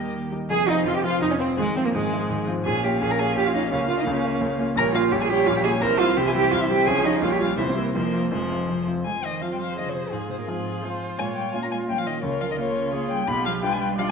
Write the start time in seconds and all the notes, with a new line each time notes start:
Already playing: D#2 D#3 G3 A#3 D#4 G4 A#4 D#5
0.32 G3 D#4 A#4
0.50 F1 F2 G#4 G#5
0.68 F3 C4 D#4 F4 D#5
0.85 F1 F2 F4 F5
0.95 G4 G5
1.04 F3 C4 F4 F5
1.21 F1 F2 D#4 D#5
1.30 C#4 C#5
1.38 F3 C4 F4 C5
1.57 G#1 G#2 G#3 G#4
1.76 F3 C4 F4 C5
1.85 A#3 A#4
1.94 G#1 G#2 G#3 G#4
2.13 F3 C4 F4
2.29 G#1 G#2
2.47 F3 C4 F4
2.64 A#1 A#2 C#4 G#4 F5 G#5
2.83 A#3 C#4 F4 G4 G5
3.00 A#1 A#2 G#4 G#5
3.11 A#4 A#5
3.19 A#3 C#4 F4 G#4 G#5
3.36 A#1 A#2 G4 G5
3.45 F4 F5
3.53 A#3 C#4 D#4 F4 D#5
3.72 C#2 C#3 A#3 C#4 C#5
3.88 A#3 C#4 F4 F5
3.99 D#4 D#5
4.07 C#2 C#3 C#4 C#5
4.24 A#3 C#4 F4
4.41 C#2 C#3
4.59 A#3 C#4 F4
4.76 A#1 A#2 G3 A#4 C#5 A#5
4.94 A#3 C#4 F4 G4 F5
5.11 A#1 A#2 G3 G4 C#5 G5
5.21 G#4 G#5
5.29 A#3 C#4 G4 G5
5.46 A#1 A#2 F4 F5
5.55 G4 G5
5.64 A#3 C#4 G4 G#4 G#5
5.81 C2 C3 E3 A#4 C5 A#5
5.99 G3 C4 E4 F4 F5
6.16 C2 C3 E3 G4 C5 G5
6.27 G#4 G#5
6.33 G3 C4 E4 G4 G5
6.51 C2 C3 F4 F5
6.61 E4 E5
6.69 G3 C4 E4 G4 G5
6.86 C#2 C#3 F3 G#4 C#5 G#5
7.04 F3 D#4 F4 G#4 D#5
7.22 A#1 A#2 G3 F4 C#5 F5
7.30 G4 G5
7.40 G3 C#4 F4 G4 F5
7.57 C2 C3 E3 E4 C5 E5
7.68 C4 C5
7.76 G3 A#3 C4 E4 A#4
7.94 F1 F2 F3 A#3 A#4 C5
8.14 F3 C4 F4
8.31 F1 F2 F3 G#3 G#4 C5
8.50 F3 C4 F4
8.68 F1 F2
8.87 F3 C4 F4
9.04 F2 G#3 C5 G#5
9.23 D#3 D#5
9.41 F3 C4 F4 F5
9.51 G3 G5
9.60 F3 F5
9.77 D#3 F3 C4 F4 G#4 D#5
9.85 C#3 C#5
9.94 C3 C5
10.11 G#2 F4 G#4
10.29 C3 C5
10.38 A#2 A#4
10.47 G#2 F3 C4 F4 G#4
10.82 F3 C4 F4 C5
11.18 A#2 G#3 C#5 G#5
11.35 G3 G5
11.52 G#3 A#3 C#4 F4 G#5
11.62 A#3 A#5
11.71 G#3 G#5
11.88 G3 A#3 C#4 F4 G5
11.97 F3 F5
12.06 D#3 D#5
12.22 C#2 C#3 F4 A#4 C#5
12.41 F3 F5
12.50 D#3 D#5
12.58 C#3 A#3 C#4 F4 C#5
12.93 A#3 C#4 F4 G#4
13.10 G3 G5
13.28 B1 B3 F4 G4 B5
13.45 F3 F5
13.62 G3 D4 F4 B4 G5
13.72 G#3 G#5
13.81 G3 G5
13.98 F3 G3 D4 F4 D5 F5
14.07 G#3